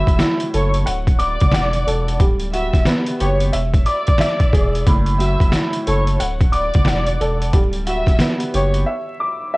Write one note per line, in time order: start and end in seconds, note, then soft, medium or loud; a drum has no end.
0.00 0.87 A2 medium
0.00 0.86 F#3 medium
0.00 0.16 E5 medium
0.00 0.17 E6 medium
0.07 0.19 E1 loud
0.07 kick loud
0.07 closed hi-hat medium
0.19 0.86 E4 medium
0.19 snare loud
0.19 closed hi-hat loud
0.40 closed hi-hat medium
0.54 0.84 F#1 medium
0.54 0.87 A4 medium
0.54 0.72 C#5 medium
0.54 0.72 C#6 medium
0.54 closed hi-hat medium
0.74 closed hi-hat medium
0.86 1.37 D1 loud
0.86 1.52 F#5 medium
0.86 closed hi-hat medium
1.07 kick loud
1.07 closed hi-hat medium
1.19 2.16 D5 medium
1.19 2.19 D6 loud
1.19 2.16 D6 medium
1.19 closed hi-hat medium
1.40 1.53 F#1 medium
1.40 kick loud
1.40 closed hi-hat medium
1.51 1.84 E1 medium
1.51 2.20 F#5 loud
1.51 snare loud
1.51 snare medium
1.51 closed hi-hat loud
1.73 closed hi-hat medium
1.87 2.17 E1 medium
1.87 2.20 A4 medium
1.87 closed hi-hat medium
2.08 closed hi-hat medium
2.20 2.70 D1 loud
2.20 3.53 G3 medium
2.20 kick loud
2.20 closed hi-hat medium
2.40 closed hi-hat medium
2.52 3.53 F#4 medium
2.52 2.83 E5 medium
2.52 2.83 E6 medium
2.52 closed hi-hat medium
2.73 2.86 D1 medium
2.73 kick loud
2.73 snare soft
2.73 closed hi-hat medium
2.85 3.53 B3 medium
2.85 snare loud
2.85 snare medium
2.85 closed hi-hat medium
3.06 closed hi-hat medium
3.20 3.51 F#1 loud
3.20 3.54 G4 medium
3.20 3.38 C#5 medium
3.20 3.39 C#6 medium
3.20 closed hi-hat medium
3.40 closed hi-hat medium
3.53 3.84 E1 loud
3.53 4.19 E5 loud
3.53 closed hi-hat medium
3.74 kick loud
3.74 closed hi-hat medium
3.86 4.83 D5 medium
3.86 4.86 D6 medium
3.86 4.83 D6 medium
3.86 closed hi-hat medium
4.07 kick loud
4.07 closed hi-hat soft
4.18 4.87 E5 loud
4.18 snare loud
4.18 snare medium
4.18 closed hi-hat loud
4.40 kick loud
4.40 closed hi-hat medium
4.53 4.84 E1 loud
4.53 4.87 G#4 medium
4.53 kick loud
4.53 closed hi-hat medium
4.75 closed hi-hat medium
4.87 5.37 F#1 loud
4.87 6.20 A2 medium
4.87 kick loud
4.87 closed hi-hat medium
5.06 closed hi-hat medium
5.19 6.20 F#3 medium
5.19 5.50 E5 medium
5.19 5.50 E6 medium
5.19 closed hi-hat medium
5.40 5.52 E1 loud
5.40 kick loud
5.40 closed hi-hat medium
5.52 6.20 E4 medium
5.52 snare loud
5.52 closed hi-hat loud
5.73 closed hi-hat medium
5.86 6.18 F#1 loud
5.86 6.20 A4 medium
5.86 6.05 C#5 medium
5.86 6.05 C#6 medium
5.86 closed hi-hat medium
6.07 closed hi-hat medium
6.20 6.70 D1 loud
6.20 6.85 F#5 medium
6.20 closed hi-hat loud
6.40 kick loud
6.40 closed hi-hat medium
6.52 7.50 D5 medium
6.52 7.53 D6 medium
6.52 7.50 D6 medium
6.52 closed hi-hat medium
6.74 6.86 F#1 loud
6.74 kick loud
6.74 closed hi-hat medium
6.85 7.18 E1 medium
6.85 7.53 F#5 loud
6.85 snare loud
6.85 snare medium
6.85 closed hi-hat loud
7.06 closed hi-hat medium
7.21 7.51 E1 loud
7.21 7.54 A4 medium
7.21 closed hi-hat medium
7.42 closed hi-hat medium
7.53 8.03 D1 loud
7.53 8.86 G3 medium
7.53 kick loud
7.53 closed hi-hat medium
7.73 closed hi-hat medium
7.87 8.87 F#4 medium
7.87 8.17 E5 medium
7.87 8.17 E6 medium
7.87 closed hi-hat medium
8.06 8.19 D1 medium
8.06 kick loud
8.06 snare soft
8.06 closed hi-hat medium
8.19 8.87 B3 medium
8.19 snare loud
8.19 closed hi-hat loud
8.40 closed hi-hat medium
8.54 8.84 F#1 medium
8.54 8.87 G4 medium
8.54 8.72 C#5 medium
8.54 8.72 C#6 medium
8.54 closed hi-hat medium
8.74 closed hi-hat medium
8.86 9.52 E5 loud
9.20 9.57 D6 medium
9.54 9.57 E5 loud